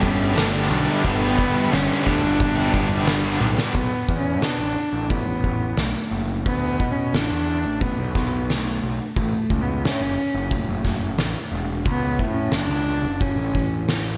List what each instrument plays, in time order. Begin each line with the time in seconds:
Already playing: overdriven electric guitar G2, distorted electric guitar G2 D3 G3, string machine A4 A5 B5 D6
0.01 picked electric bass G1, overdriven electric guitar G3 B3 D4 G4, cello C#4, kick, crash
0.19 muted overdriven electric guitar stroke
0.35 overdriven electric guitar G2 D3 G3 B3 D4 G4, cello A3, snare, crash
0.51 overdriven electric guitar G3 B3 D4 G4
0.68 picked electric bass B1, overdriven electric guitar G3 B3 D4 G4, cello D4, crash
0.86 overdriven electric guitar G3 B3 D4 G4
1.03 picked electric bass G1, overdriven electric guitar G2 D3 G3 B3 D4 G4, distorted electric guitar G2 D3 G3, cello B3, string machine C#6, kick, crash
1.37 overdriven electric guitar G3 B3 D4 G4, kick, crash
1.53 overdriven electric guitar G3 B3 D4 G4
1.70 picked electric bass G1, overdriven electric guitar G2 D3 G3 B3 D4 G4, cello C#4, snare, crash
1.88 overdriven electric guitar G3 B3 D4 G4, snare
2.04 picked electric bass D2, distorted electric guitar D3 G3, overdriven electric guitar G3 B3 D4 G4, cello D4, kick
2.08 distorted electric guitar G2, crash
2.23 picked electric bass G1, muted overdriven electric guitar stroke
2.40 picked electric bass G1, kick, crash
2.56 overdriven electric guitar G3 B3 D4 G4
2.73 picked electric bass G1, overdriven electric guitar G3 B3 D4 G4, kick, crash
2.88 muted overdriven electric guitar stroke
3.07 overdriven electric guitar G2 D3 G3 B3 D4 G4, snare, crash
3.23 overdriven electric guitar G3 B3 D4 G4
3.40 picked electric bass B1, overdriven electric guitar G3 B3 D4 G4, high tom
3.57 overdriven electric guitar G3 B3 D4 G4, snare
3.73 picked electric bass B1, cello B3, kick, open hi-hat
4.09 picked electric bass E2, kick
4.19 cello C#4
4.42 picked electric bass B2, cello D4, snare, open hi-hat
4.59 picked electric bass A1
4.93 picked electric bass A1
5.10 cello B3, kick, open hi-hat
5.26 picked electric bass A1
5.44 kick
5.77 picked electric bass B1, cello A3, snare, open hi-hat
6.11 picked electric bass F#1
6.46 picked electric bass D2, cello B3, kick, open hi-hat
6.80 picked electric bass B2, kick
6.91 cello C#4
7.13 picked electric bass A1, cello D4, snare, open hi-hat
7.31 picked electric bass E2
7.66 picked electric bass A1
7.81 cello B3, kick, open hi-hat
7.99 picked electric bass B1
8.15 picked electric bass B1, kick, snare
8.49 cello A3, snare, open hi-hat
8.83 picked electric bass B1
9.16 picked electric bass A1, cello A3, kick, open hi-hat
9.50 picked electric bass C#2, kick
9.62 cello B3
9.83 picked electric bass A2, cello C#4, snare, open hi-hat
10.01 picked electric bass F#1
10.34 picked electric bass F#1
10.51 cello A3, kick, open hi-hat
10.68 picked electric bass F#1
10.85 kick, snare
11.18 picked electric bass A1, snare, open hi-hat
11.52 picked electric bass E1
11.85 picked electric bass C#2, kick, open hi-hat
11.90 cello B3
12.19 picked electric bass A2, kick
12.32 cello C#4
12.51 picked electric bass F#1, cello D4, snare, open hi-hat
12.69 picked electric bass C#2
13.03 picked electric bass F#1
13.20 cello C#4, kick, open hi-hat
13.36 picked electric bass A1
13.55 picked electric bass A1, kick
13.88 snare, open hi-hat